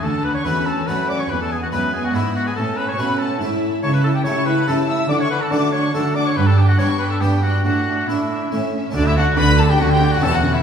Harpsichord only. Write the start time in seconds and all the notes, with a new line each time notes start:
0.03 D2
0.46 E2 A3 D4 F#4
0.88 F#2 A3 D4 F#4
1.30 E2
1.72 F#2 G#3 D4 E4
2.14 G#2 G#3 D4 E4
2.56 A2
2.99 B2 A3 C#4 E4
3.41 G#2 A3 C#4 E4
3.83 C#3
4.25 C#3 A3 E4 G4
4.68 C#3 A3 E4 G4
5.10 D3
5.52 D3 A3 D4 F#4
5.94 D3 A3 D4 F#4
6.37 G2
6.79 G2 B3 D4 G4
7.22 G2 B3 D4 G4
7.65 A2
8.09 A2 A3 D4 E4
8.52 A2 A3 C#4 E4
8.90 A3 D4 F#4
8.95 D3
9.37 D3
9.80 D3
10.18 A3 C#4 E4
10.23 E2